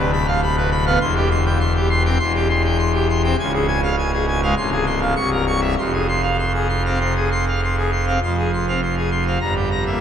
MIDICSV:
0, 0, Header, 1, 2, 480
1, 0, Start_track
1, 0, Tempo, 589971
1, 821, Time_signature, 4, 2, 24, 8
1, 3708, Tempo, 609137
1, 6588, Tempo, 592885
1, 8040, End_track
2, 0, Start_track
2, 0, Title_t, "Pipe organ"
2, 0, Program_c, 0, 19
2, 0, Note_on_c, 0, 26, 108
2, 0, Note_on_c, 0, 38, 113
2, 0, Note_on_c, 0, 71, 78
2, 90, Note_off_c, 0, 71, 0
2, 107, Note_on_c, 0, 83, 92
2, 213, Note_off_c, 0, 83, 0
2, 223, Note_on_c, 0, 77, 83
2, 330, Note_off_c, 0, 77, 0
2, 348, Note_on_c, 0, 83, 93
2, 452, Note_off_c, 0, 83, 0
2, 462, Note_on_c, 0, 71, 84
2, 569, Note_off_c, 0, 71, 0
2, 583, Note_on_c, 0, 83, 100
2, 689, Note_off_c, 0, 83, 0
2, 703, Note_on_c, 0, 59, 76
2, 703, Note_on_c, 0, 77, 82
2, 788, Note_off_c, 0, 26, 0
2, 790, Note_off_c, 0, 38, 0
2, 804, Note_off_c, 0, 59, 0
2, 804, Note_off_c, 0, 77, 0
2, 823, Note_on_c, 0, 84, 124
2, 824, Note_on_c, 0, 40, 98
2, 825, Note_on_c, 0, 28, 101
2, 928, Note_off_c, 0, 84, 0
2, 941, Note_on_c, 0, 67, 85
2, 1047, Note_off_c, 0, 67, 0
2, 1067, Note_on_c, 0, 84, 87
2, 1171, Note_off_c, 0, 84, 0
2, 1188, Note_on_c, 0, 79, 86
2, 1291, Note_off_c, 0, 79, 0
2, 1301, Note_on_c, 0, 84, 80
2, 1407, Note_off_c, 0, 84, 0
2, 1429, Note_on_c, 0, 67, 78
2, 1531, Note_off_c, 0, 67, 0
2, 1545, Note_on_c, 0, 84, 89
2, 1649, Note_off_c, 0, 84, 0
2, 1669, Note_on_c, 0, 79, 96
2, 1670, Note_on_c, 0, 60, 84
2, 1772, Note_off_c, 0, 40, 0
2, 1772, Note_off_c, 0, 60, 0
2, 1772, Note_off_c, 0, 79, 0
2, 1773, Note_off_c, 0, 28, 0
2, 1786, Note_on_c, 0, 84, 93
2, 1788, Note_on_c, 0, 40, 97
2, 1790, Note_on_c, 0, 28, 99
2, 1890, Note_off_c, 0, 84, 0
2, 1914, Note_on_c, 0, 67, 74
2, 2015, Note_off_c, 0, 67, 0
2, 2031, Note_on_c, 0, 84, 89
2, 2133, Note_off_c, 0, 84, 0
2, 2152, Note_on_c, 0, 79, 79
2, 2254, Note_off_c, 0, 79, 0
2, 2267, Note_on_c, 0, 84, 99
2, 2372, Note_off_c, 0, 84, 0
2, 2394, Note_on_c, 0, 67, 76
2, 2495, Note_off_c, 0, 67, 0
2, 2520, Note_on_c, 0, 84, 93
2, 2619, Note_off_c, 0, 84, 0
2, 2639, Note_on_c, 0, 79, 78
2, 2640, Note_on_c, 0, 60, 76
2, 2718, Note_off_c, 0, 28, 0
2, 2718, Note_off_c, 0, 40, 0
2, 2733, Note_off_c, 0, 79, 0
2, 2734, Note_off_c, 0, 60, 0
2, 2764, Note_on_c, 0, 25, 107
2, 2764, Note_on_c, 0, 37, 100
2, 2764, Note_on_c, 0, 80, 114
2, 2862, Note_off_c, 0, 80, 0
2, 2879, Note_on_c, 0, 68, 77
2, 2979, Note_off_c, 0, 68, 0
2, 2993, Note_on_c, 0, 80, 84
2, 3096, Note_off_c, 0, 80, 0
2, 3118, Note_on_c, 0, 77, 83
2, 3219, Note_off_c, 0, 77, 0
2, 3243, Note_on_c, 0, 80, 79
2, 3343, Note_off_c, 0, 80, 0
2, 3362, Note_on_c, 0, 68, 66
2, 3462, Note_off_c, 0, 68, 0
2, 3483, Note_on_c, 0, 80, 85
2, 3583, Note_off_c, 0, 80, 0
2, 3600, Note_on_c, 0, 56, 79
2, 3603, Note_on_c, 0, 77, 87
2, 3690, Note_off_c, 0, 25, 0
2, 3690, Note_off_c, 0, 37, 0
2, 3697, Note_off_c, 0, 56, 0
2, 3699, Note_off_c, 0, 77, 0
2, 3718, Note_on_c, 0, 24, 94
2, 3718, Note_on_c, 0, 36, 99
2, 3720, Note_on_c, 0, 84, 110
2, 3820, Note_off_c, 0, 84, 0
2, 3839, Note_on_c, 0, 68, 71
2, 3938, Note_off_c, 0, 68, 0
2, 3951, Note_on_c, 0, 84, 84
2, 4053, Note_off_c, 0, 84, 0
2, 4068, Note_on_c, 0, 77, 67
2, 4166, Note_off_c, 0, 77, 0
2, 4170, Note_off_c, 0, 24, 0
2, 4170, Note_off_c, 0, 36, 0
2, 4186, Note_on_c, 0, 85, 111
2, 4188, Note_on_c, 0, 24, 98
2, 4189, Note_on_c, 0, 36, 86
2, 4289, Note_off_c, 0, 85, 0
2, 4307, Note_on_c, 0, 70, 69
2, 4410, Note_off_c, 0, 70, 0
2, 4427, Note_on_c, 0, 85, 87
2, 4530, Note_off_c, 0, 85, 0
2, 4538, Note_on_c, 0, 76, 74
2, 4641, Note_off_c, 0, 76, 0
2, 4649, Note_off_c, 0, 24, 0
2, 4649, Note_off_c, 0, 36, 0
2, 4674, Note_on_c, 0, 29, 89
2, 4675, Note_on_c, 0, 84, 102
2, 4676, Note_on_c, 0, 41, 84
2, 4777, Note_off_c, 0, 84, 0
2, 4794, Note_on_c, 0, 68, 68
2, 4896, Note_off_c, 0, 68, 0
2, 4913, Note_on_c, 0, 84, 72
2, 5016, Note_off_c, 0, 84, 0
2, 5026, Note_on_c, 0, 77, 73
2, 5133, Note_off_c, 0, 77, 0
2, 5152, Note_on_c, 0, 84, 70
2, 5257, Note_off_c, 0, 84, 0
2, 5272, Note_on_c, 0, 68, 58
2, 5377, Note_off_c, 0, 68, 0
2, 5389, Note_on_c, 0, 84, 71
2, 5496, Note_off_c, 0, 84, 0
2, 5519, Note_on_c, 0, 60, 66
2, 5520, Note_on_c, 0, 77, 75
2, 5622, Note_off_c, 0, 60, 0
2, 5623, Note_off_c, 0, 77, 0
2, 5637, Note_on_c, 0, 48, 74
2, 5638, Note_on_c, 0, 84, 79
2, 5741, Note_off_c, 0, 48, 0
2, 5742, Note_off_c, 0, 84, 0
2, 5762, Note_on_c, 0, 68, 64
2, 5864, Note_off_c, 0, 68, 0
2, 5885, Note_on_c, 0, 84, 73
2, 5986, Note_off_c, 0, 84, 0
2, 6011, Note_on_c, 0, 77, 61
2, 6109, Note_off_c, 0, 77, 0
2, 6136, Note_on_c, 0, 84, 71
2, 6232, Note_off_c, 0, 84, 0
2, 6248, Note_on_c, 0, 68, 63
2, 6348, Note_off_c, 0, 68, 0
2, 6360, Note_on_c, 0, 84, 76
2, 6462, Note_off_c, 0, 84, 0
2, 6478, Note_on_c, 0, 77, 60
2, 6480, Note_on_c, 0, 60, 60
2, 6564, Note_off_c, 0, 29, 0
2, 6565, Note_off_c, 0, 41, 0
2, 6575, Note_off_c, 0, 77, 0
2, 6576, Note_off_c, 0, 60, 0
2, 6603, Note_on_c, 0, 41, 84
2, 6606, Note_on_c, 0, 84, 97
2, 6608, Note_on_c, 0, 29, 74
2, 6706, Note_off_c, 0, 84, 0
2, 6726, Note_on_c, 0, 68, 60
2, 6826, Note_off_c, 0, 68, 0
2, 6851, Note_on_c, 0, 84, 64
2, 6949, Note_off_c, 0, 84, 0
2, 6970, Note_on_c, 0, 77, 72
2, 6972, Note_on_c, 0, 60, 61
2, 7068, Note_off_c, 0, 77, 0
2, 7069, Note_off_c, 0, 60, 0
2, 7087, Note_on_c, 0, 84, 66
2, 7187, Note_off_c, 0, 84, 0
2, 7207, Note_on_c, 0, 68, 59
2, 7306, Note_off_c, 0, 68, 0
2, 7319, Note_on_c, 0, 84, 69
2, 7422, Note_off_c, 0, 84, 0
2, 7443, Note_on_c, 0, 60, 63
2, 7447, Note_on_c, 0, 77, 68
2, 7528, Note_off_c, 0, 41, 0
2, 7530, Note_off_c, 0, 29, 0
2, 7539, Note_off_c, 0, 60, 0
2, 7541, Note_off_c, 0, 77, 0
2, 7553, Note_on_c, 0, 82, 92
2, 7555, Note_on_c, 0, 43, 86
2, 7557, Note_on_c, 0, 31, 79
2, 7658, Note_off_c, 0, 82, 0
2, 7681, Note_on_c, 0, 67, 62
2, 7783, Note_off_c, 0, 67, 0
2, 7803, Note_on_c, 0, 82, 70
2, 7904, Note_off_c, 0, 82, 0
2, 7926, Note_on_c, 0, 58, 57
2, 7927, Note_on_c, 0, 76, 63
2, 8025, Note_off_c, 0, 58, 0
2, 8025, Note_off_c, 0, 76, 0
2, 8040, Note_off_c, 0, 31, 0
2, 8040, Note_off_c, 0, 43, 0
2, 8040, End_track
0, 0, End_of_file